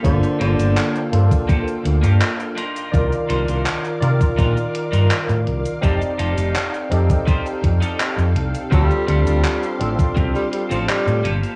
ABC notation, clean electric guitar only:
X:1
M:4/4
L:1/16
Q:1/4=83
K:Dphr
V:1 name="Clean electric guitar"
[B,FGA] z [B,FGA]3 z3 [B,FGA] z2 [B,FGA] z2 [DEFB]2- | [DEFB] z [DEFc]3 z3 [DEFB] z2 [DEFB] z4 | [EFGA] z [EFGA]3 z3 [EFGc] z2 [EFGA] z4 | [CDFA] z [CDFA]3 z3 [CDFG] z2 [CDFA] z2 [B,FGA]2 |]